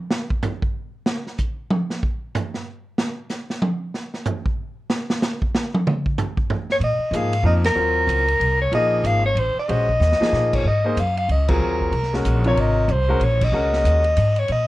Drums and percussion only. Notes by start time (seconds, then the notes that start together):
0.11 snare
0.31 kick
0.43 floor tom, hi-hat pedal
0.63 kick
1.06 snare
1.27 snare
1.38 kick, hi-hat pedal
1.70 high tom
1.90 snare
2.03 kick
2.35 floor tom, hi-hat pedal
2.54 snare
2.98 snare
3.30 snare, hi-hat pedal
3.50 snare
3.62 high tom
3.94 snare
4.14 snare
4.25 floor tom, hi-hat pedal
4.46 kick
4.90 snare
5.10 snare
5.22 snare, hi-hat pedal
5.42 kick
5.55 snare
5.74 high tom
5.87 mid tom
6.06 kick
6.18 floor tom, hi-hat pedal
6.38 kick
6.50 floor tom
6.70 snare
6.81 ride
7.13 hi-hat pedal, ride
7.33 ride
7.64 snare, ride
8.09 hi-hat pedal, ride
8.28 ride
8.41 ride
8.72 ride
9.05 hi-hat pedal, ride
9.37 ride
9.69 ride
9.89 kick
10.01 snare, hi-hat pedal
10.12 snare
10.22 snare
10.33 snare
10.53 kick, crash
10.97 hi-hat pedal, ride
11.17 ride
11.29 ride
11.48 kick, crash
11.81 kick
11.93 ride
12.03 snare
12.14 snare
12.25 hi-hat pedal, ride
12.44 ride
12.57 ride
12.89 hi-hat pedal, ride
13.21 ride
13.41 kick, crash
13.73 snare
13.85 hi-hat pedal, ride
14.04 ride
14.16 hi-hat pedal, ride
14.36 ride
14.48 ride